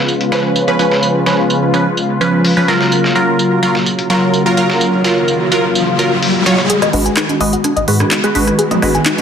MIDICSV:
0, 0, Header, 1, 7, 480
1, 0, Start_track
1, 0, Tempo, 472441
1, 1044, Time_signature, 4, 2, 24, 8
1, 9367, End_track
2, 0, Start_track
2, 0, Title_t, "Synth arpeggio sound"
2, 0, Program_c, 0, 84
2, 6805, Note_on_c, 0, 68, 80
2, 6885, Note_off_c, 0, 68, 0
2, 6931, Note_on_c, 0, 75, 75
2, 7003, Note_off_c, 0, 75, 0
2, 7045, Note_on_c, 0, 75, 73
2, 7125, Note_off_c, 0, 75, 0
2, 7170, Note_on_c, 0, 80, 75
2, 7243, Note_off_c, 0, 80, 0
2, 7285, Note_on_c, 0, 63, 83
2, 7365, Note_off_c, 0, 63, 0
2, 7525, Note_on_c, 0, 75, 96
2, 7644, Note_off_c, 0, 75, 0
2, 7650, Note_on_c, 0, 66, 75
2, 7694, Note_off_c, 0, 66, 0
2, 7890, Note_on_c, 0, 75, 76
2, 7963, Note_off_c, 0, 75, 0
2, 8005, Note_on_c, 0, 68, 75
2, 8085, Note_off_c, 0, 68, 0
2, 8244, Note_on_c, 0, 63, 82
2, 8324, Note_off_c, 0, 63, 0
2, 8370, Note_on_c, 0, 68, 76
2, 8479, Note_off_c, 0, 68, 0
2, 8724, Note_on_c, 0, 68, 82
2, 8804, Note_off_c, 0, 68, 0
2, 8850, Note_on_c, 0, 75, 77
2, 8923, Note_off_c, 0, 75, 0
2, 8965, Note_on_c, 0, 75, 76
2, 9045, Note_off_c, 0, 75, 0
2, 9090, Note_on_c, 0, 80, 76
2, 9163, Note_off_c, 0, 80, 0
2, 9205, Note_on_c, 0, 63, 82
2, 9285, Note_off_c, 0, 63, 0
2, 9367, End_track
3, 0, Start_track
3, 0, Title_t, "Supersaw synth"
3, 0, Program_c, 1, 81
3, 324, Note_on_c, 1, 53, 85
3, 324, Note_on_c, 1, 61, 76
3, 325, Note_on_c, 1, 71, 97
3, 660, Note_off_c, 1, 53, 0
3, 660, Note_off_c, 1, 61, 0
3, 660, Note_off_c, 1, 71, 0
3, 689, Note_on_c, 1, 53, 89
3, 689, Note_on_c, 1, 61, 82
3, 689, Note_on_c, 1, 71, 99
3, 787, Note_off_c, 1, 53, 0
3, 787, Note_off_c, 1, 61, 0
3, 787, Note_off_c, 1, 71, 0
3, 804, Note_on_c, 1, 61, 85
3, 805, Note_on_c, 1, 53, 90
3, 805, Note_on_c, 1, 71, 102
3, 1257, Note_off_c, 1, 53, 0
3, 1257, Note_off_c, 1, 61, 0
3, 1257, Note_off_c, 1, 71, 0
3, 1284, Note_on_c, 1, 71, 82
3, 1285, Note_on_c, 1, 53, 75
3, 1285, Note_on_c, 1, 61, 68
3, 1737, Note_off_c, 1, 53, 0
3, 1737, Note_off_c, 1, 61, 0
3, 1737, Note_off_c, 1, 71, 0
3, 1764, Note_on_c, 1, 53, 76
3, 1765, Note_on_c, 1, 61, 67
3, 1765, Note_on_c, 1, 71, 85
3, 1900, Note_off_c, 1, 53, 0
3, 1900, Note_off_c, 1, 61, 0
3, 1900, Note_off_c, 1, 71, 0
3, 2244, Note_on_c, 1, 53, 86
3, 2244, Note_on_c, 1, 61, 79
3, 2244, Note_on_c, 1, 71, 96
3, 2580, Note_off_c, 1, 53, 0
3, 2580, Note_off_c, 1, 61, 0
3, 2580, Note_off_c, 1, 71, 0
3, 2610, Note_on_c, 1, 53, 92
3, 2610, Note_on_c, 1, 61, 80
3, 2610, Note_on_c, 1, 71, 99
3, 2707, Note_off_c, 1, 61, 0
3, 2707, Note_off_c, 1, 71, 0
3, 2708, Note_off_c, 1, 53, 0
3, 2725, Note_on_c, 1, 54, 92
3, 2725, Note_on_c, 1, 65, 87
3, 2725, Note_on_c, 1, 70, 104
3, 3177, Note_off_c, 1, 54, 0
3, 3177, Note_off_c, 1, 65, 0
3, 3177, Note_off_c, 1, 70, 0
3, 3205, Note_on_c, 1, 54, 73
3, 3205, Note_on_c, 1, 65, 68
3, 3205, Note_on_c, 1, 70, 83
3, 3657, Note_off_c, 1, 65, 0
3, 3657, Note_off_c, 1, 70, 0
3, 3658, Note_off_c, 1, 54, 0
3, 3685, Note_on_c, 1, 54, 76
3, 3685, Note_on_c, 1, 65, 71
3, 3685, Note_on_c, 1, 70, 84
3, 3820, Note_off_c, 1, 54, 0
3, 3820, Note_off_c, 1, 65, 0
3, 3820, Note_off_c, 1, 70, 0
3, 4165, Note_on_c, 1, 54, 89
3, 4165, Note_on_c, 1, 65, 81
3, 4165, Note_on_c, 1, 70, 98
3, 4500, Note_off_c, 1, 54, 0
3, 4500, Note_off_c, 1, 65, 0
3, 4500, Note_off_c, 1, 70, 0
3, 4531, Note_on_c, 1, 54, 91
3, 4531, Note_on_c, 1, 65, 83
3, 4531, Note_on_c, 1, 70, 98
3, 4628, Note_off_c, 1, 54, 0
3, 4628, Note_off_c, 1, 65, 0
3, 4628, Note_off_c, 1, 70, 0
3, 4646, Note_on_c, 1, 54, 94
3, 4646, Note_on_c, 1, 65, 85
3, 4646, Note_on_c, 1, 70, 102
3, 5098, Note_off_c, 1, 54, 0
3, 5098, Note_off_c, 1, 65, 0
3, 5098, Note_off_c, 1, 70, 0
3, 5125, Note_on_c, 1, 65, 71
3, 5125, Note_on_c, 1, 70, 81
3, 5126, Note_on_c, 1, 54, 76
3, 5577, Note_off_c, 1, 70, 0
3, 5578, Note_off_c, 1, 54, 0
3, 5578, Note_off_c, 1, 65, 0
3, 5605, Note_on_c, 1, 54, 75
3, 5605, Note_on_c, 1, 65, 72
3, 5605, Note_on_c, 1, 70, 86
3, 5740, Note_off_c, 1, 54, 0
3, 5740, Note_off_c, 1, 65, 0
3, 5740, Note_off_c, 1, 70, 0
3, 6085, Note_on_c, 1, 54, 79
3, 6085, Note_on_c, 1, 65, 71
3, 6085, Note_on_c, 1, 70, 83
3, 6220, Note_off_c, 1, 54, 0
3, 6220, Note_off_c, 1, 65, 0
3, 6220, Note_off_c, 1, 70, 0
3, 6564, Note_on_c, 1, 65, 87
3, 6564, Note_on_c, 1, 73, 102
3, 6565, Note_on_c, 1, 54, 95
3, 6700, Note_off_c, 1, 54, 0
3, 6700, Note_off_c, 1, 65, 0
3, 6700, Note_off_c, 1, 73, 0
3, 7045, Note_on_c, 1, 56, 77
3, 7045, Note_on_c, 1, 66, 69
3, 7045, Note_on_c, 1, 71, 85
3, 7497, Note_off_c, 1, 56, 0
3, 7497, Note_off_c, 1, 71, 0
3, 7498, Note_off_c, 1, 66, 0
3, 7524, Note_on_c, 1, 56, 78
3, 7524, Note_on_c, 1, 66, 70
3, 7524, Note_on_c, 1, 71, 85
3, 7660, Note_off_c, 1, 56, 0
3, 7660, Note_off_c, 1, 66, 0
3, 7660, Note_off_c, 1, 71, 0
3, 8004, Note_on_c, 1, 56, 89
3, 8004, Note_on_c, 1, 71, 99
3, 8005, Note_on_c, 1, 66, 81
3, 8340, Note_off_c, 1, 56, 0
3, 8340, Note_off_c, 1, 66, 0
3, 8340, Note_off_c, 1, 71, 0
3, 8371, Note_on_c, 1, 56, 90
3, 8371, Note_on_c, 1, 66, 83
3, 8371, Note_on_c, 1, 71, 101
3, 8468, Note_off_c, 1, 56, 0
3, 8468, Note_off_c, 1, 66, 0
3, 8468, Note_off_c, 1, 71, 0
3, 8484, Note_on_c, 1, 56, 95
3, 8484, Note_on_c, 1, 71, 105
3, 8485, Note_on_c, 1, 66, 85
3, 8937, Note_off_c, 1, 56, 0
3, 8937, Note_off_c, 1, 66, 0
3, 8937, Note_off_c, 1, 71, 0
3, 8965, Note_on_c, 1, 56, 78
3, 8965, Note_on_c, 1, 66, 71
3, 8965, Note_on_c, 1, 71, 84
3, 9367, Note_off_c, 1, 56, 0
3, 9367, Note_off_c, 1, 66, 0
3, 9367, Note_off_c, 1, 71, 0
3, 9367, End_track
4, 0, Start_track
4, 0, Title_t, "Analog synth pad"
4, 0, Program_c, 2, 89
4, 0, Note_on_c, 2, 49, 76
4, 0, Note_on_c, 2, 56, 70
4, 0, Note_on_c, 2, 59, 69
4, 0, Note_on_c, 2, 65, 83
4, 2924, Note_off_c, 2, 56, 0
4, 2925, Note_off_c, 2, 59, 0
4, 2965, Note_on_c, 2, 54, 70
4, 2965, Note_on_c, 2, 58, 70
4, 4845, Note_off_c, 2, 65, 0
4, 4886, Note_on_c, 2, 65, 86
4, 6764, Note_off_c, 2, 49, 0
4, 6766, Note_off_c, 2, 58, 0
4, 6767, Note_off_c, 2, 54, 0
4, 6786, Note_off_c, 2, 65, 0
4, 6805, Note_on_c, 2, 56, 70
4, 6806, Note_on_c, 2, 51, 76
4, 6806, Note_on_c, 2, 59, 71
4, 6806, Note_on_c, 2, 66, 82
4, 9367, Note_off_c, 2, 51, 0
4, 9367, Note_off_c, 2, 56, 0
4, 9367, Note_off_c, 2, 59, 0
4, 9367, Note_off_c, 2, 66, 0
4, 9367, End_track
5, 0, Start_track
5, 0, Title_t, "Sub bass"
5, 0, Program_c, 3, 38
5, 7044, Note_on_c, 3, 32, 95
5, 7195, Note_off_c, 3, 32, 0
5, 7524, Note_on_c, 3, 32, 85
5, 7675, Note_off_c, 3, 32, 0
5, 7890, Note_on_c, 3, 32, 96
5, 7960, Note_off_c, 3, 32, 0
5, 8004, Note_on_c, 3, 44, 79
5, 8155, Note_off_c, 3, 44, 0
5, 8485, Note_on_c, 3, 32, 90
5, 8635, Note_off_c, 3, 32, 0
5, 8964, Note_on_c, 3, 32, 97
5, 9115, Note_off_c, 3, 32, 0
5, 9367, End_track
6, 0, Start_track
6, 0, Title_t, "Riser"
6, 0, Program_c, 4, 103
6, 2965, Note_on_c, 4, 60, 71
6, 6804, Note_off_c, 4, 60, 0
6, 6804, Note_on_c, 4, 60, 75
6, 9367, Note_off_c, 4, 60, 0
6, 9367, End_track
7, 0, Start_track
7, 0, Title_t, "Drums"
7, 85, Note_on_c, 9, 54, 77
7, 187, Note_off_c, 9, 54, 0
7, 210, Note_on_c, 9, 42, 40
7, 312, Note_off_c, 9, 42, 0
7, 325, Note_on_c, 9, 38, 49
7, 325, Note_on_c, 9, 54, 64
7, 427, Note_off_c, 9, 38, 0
7, 427, Note_off_c, 9, 54, 0
7, 565, Note_on_c, 9, 54, 82
7, 666, Note_off_c, 9, 54, 0
7, 805, Note_on_c, 9, 54, 58
7, 906, Note_off_c, 9, 54, 0
7, 930, Note_on_c, 9, 38, 46
7, 1031, Note_off_c, 9, 38, 0
7, 1043, Note_on_c, 9, 54, 81
7, 1145, Note_off_c, 9, 54, 0
7, 1284, Note_on_c, 9, 38, 52
7, 1284, Note_on_c, 9, 54, 62
7, 1386, Note_off_c, 9, 38, 0
7, 1386, Note_off_c, 9, 54, 0
7, 1524, Note_on_c, 9, 54, 81
7, 1626, Note_off_c, 9, 54, 0
7, 1765, Note_on_c, 9, 54, 63
7, 1866, Note_off_c, 9, 54, 0
7, 2004, Note_on_c, 9, 54, 79
7, 2106, Note_off_c, 9, 54, 0
7, 2245, Note_on_c, 9, 54, 63
7, 2347, Note_off_c, 9, 54, 0
7, 2485, Note_on_c, 9, 46, 75
7, 2587, Note_off_c, 9, 46, 0
7, 2725, Note_on_c, 9, 38, 49
7, 2725, Note_on_c, 9, 54, 60
7, 2827, Note_off_c, 9, 38, 0
7, 2827, Note_off_c, 9, 54, 0
7, 2851, Note_on_c, 9, 38, 42
7, 2952, Note_off_c, 9, 38, 0
7, 2965, Note_on_c, 9, 54, 83
7, 3067, Note_off_c, 9, 54, 0
7, 3091, Note_on_c, 9, 38, 42
7, 3192, Note_off_c, 9, 38, 0
7, 3205, Note_on_c, 9, 54, 62
7, 3307, Note_off_c, 9, 54, 0
7, 3445, Note_on_c, 9, 54, 79
7, 3547, Note_off_c, 9, 54, 0
7, 3685, Note_on_c, 9, 54, 64
7, 3787, Note_off_c, 9, 54, 0
7, 3810, Note_on_c, 9, 38, 46
7, 3911, Note_off_c, 9, 38, 0
7, 3925, Note_on_c, 9, 54, 80
7, 4027, Note_off_c, 9, 54, 0
7, 4050, Note_on_c, 9, 42, 41
7, 4152, Note_off_c, 9, 42, 0
7, 4165, Note_on_c, 9, 38, 48
7, 4165, Note_on_c, 9, 54, 65
7, 4266, Note_off_c, 9, 38, 0
7, 4266, Note_off_c, 9, 54, 0
7, 4405, Note_on_c, 9, 54, 82
7, 4506, Note_off_c, 9, 54, 0
7, 4645, Note_on_c, 9, 54, 61
7, 4746, Note_off_c, 9, 54, 0
7, 4772, Note_on_c, 9, 38, 48
7, 4873, Note_off_c, 9, 38, 0
7, 4885, Note_on_c, 9, 54, 83
7, 4987, Note_off_c, 9, 54, 0
7, 5125, Note_on_c, 9, 38, 53
7, 5125, Note_on_c, 9, 54, 63
7, 5226, Note_off_c, 9, 38, 0
7, 5226, Note_off_c, 9, 54, 0
7, 5364, Note_on_c, 9, 54, 78
7, 5466, Note_off_c, 9, 54, 0
7, 5604, Note_on_c, 9, 54, 63
7, 5706, Note_off_c, 9, 54, 0
7, 5845, Note_on_c, 9, 54, 78
7, 5946, Note_off_c, 9, 54, 0
7, 6085, Note_on_c, 9, 54, 66
7, 6186, Note_off_c, 9, 54, 0
7, 6325, Note_on_c, 9, 46, 75
7, 6426, Note_off_c, 9, 46, 0
7, 6564, Note_on_c, 9, 38, 52
7, 6564, Note_on_c, 9, 54, 61
7, 6666, Note_off_c, 9, 38, 0
7, 6666, Note_off_c, 9, 54, 0
7, 6690, Note_on_c, 9, 38, 44
7, 6791, Note_off_c, 9, 38, 0
7, 6805, Note_on_c, 9, 42, 91
7, 6906, Note_off_c, 9, 42, 0
7, 6930, Note_on_c, 9, 37, 39
7, 6931, Note_on_c, 9, 42, 38
7, 7032, Note_off_c, 9, 37, 0
7, 7032, Note_off_c, 9, 42, 0
7, 7043, Note_on_c, 9, 63, 88
7, 7045, Note_on_c, 9, 46, 101
7, 7145, Note_off_c, 9, 63, 0
7, 7146, Note_off_c, 9, 46, 0
7, 7170, Note_on_c, 9, 42, 38
7, 7272, Note_off_c, 9, 42, 0
7, 7283, Note_on_c, 9, 39, 114
7, 7284, Note_on_c, 9, 37, 76
7, 7285, Note_on_c, 9, 42, 89
7, 7384, Note_off_c, 9, 39, 0
7, 7385, Note_off_c, 9, 37, 0
7, 7387, Note_off_c, 9, 42, 0
7, 7411, Note_on_c, 9, 42, 40
7, 7411, Note_on_c, 9, 63, 63
7, 7512, Note_off_c, 9, 42, 0
7, 7512, Note_off_c, 9, 63, 0
7, 7524, Note_on_c, 9, 46, 96
7, 7626, Note_off_c, 9, 46, 0
7, 7650, Note_on_c, 9, 42, 40
7, 7752, Note_off_c, 9, 42, 0
7, 7765, Note_on_c, 9, 37, 39
7, 7765, Note_on_c, 9, 42, 93
7, 7765, Note_on_c, 9, 63, 89
7, 7866, Note_off_c, 9, 37, 0
7, 7866, Note_off_c, 9, 42, 0
7, 7866, Note_off_c, 9, 63, 0
7, 7890, Note_on_c, 9, 42, 39
7, 7992, Note_off_c, 9, 42, 0
7, 8004, Note_on_c, 9, 46, 99
7, 8106, Note_off_c, 9, 46, 0
7, 8130, Note_on_c, 9, 37, 80
7, 8130, Note_on_c, 9, 42, 38
7, 8130, Note_on_c, 9, 63, 65
7, 8231, Note_off_c, 9, 42, 0
7, 8232, Note_off_c, 9, 37, 0
7, 8232, Note_off_c, 9, 63, 0
7, 8242, Note_on_c, 9, 39, 116
7, 8244, Note_on_c, 9, 42, 92
7, 8343, Note_off_c, 9, 39, 0
7, 8346, Note_off_c, 9, 42, 0
7, 8370, Note_on_c, 9, 42, 36
7, 8472, Note_off_c, 9, 42, 0
7, 8485, Note_on_c, 9, 46, 101
7, 8485, Note_on_c, 9, 63, 95
7, 8587, Note_off_c, 9, 46, 0
7, 8587, Note_off_c, 9, 63, 0
7, 8611, Note_on_c, 9, 37, 39
7, 8611, Note_on_c, 9, 42, 38
7, 8712, Note_off_c, 9, 42, 0
7, 8713, Note_off_c, 9, 37, 0
7, 8725, Note_on_c, 9, 42, 91
7, 8826, Note_off_c, 9, 42, 0
7, 8850, Note_on_c, 9, 47, 81
7, 8851, Note_on_c, 9, 42, 39
7, 8952, Note_off_c, 9, 42, 0
7, 8952, Note_off_c, 9, 47, 0
7, 8965, Note_on_c, 9, 37, 78
7, 8965, Note_on_c, 9, 46, 106
7, 8965, Note_on_c, 9, 63, 87
7, 9066, Note_off_c, 9, 37, 0
7, 9066, Note_off_c, 9, 63, 0
7, 9067, Note_off_c, 9, 46, 0
7, 9091, Note_on_c, 9, 42, 38
7, 9192, Note_off_c, 9, 42, 0
7, 9202, Note_on_c, 9, 39, 117
7, 9205, Note_on_c, 9, 42, 87
7, 9304, Note_off_c, 9, 39, 0
7, 9307, Note_off_c, 9, 42, 0
7, 9331, Note_on_c, 9, 42, 38
7, 9331, Note_on_c, 9, 63, 63
7, 9367, Note_off_c, 9, 42, 0
7, 9367, Note_off_c, 9, 63, 0
7, 9367, End_track
0, 0, End_of_file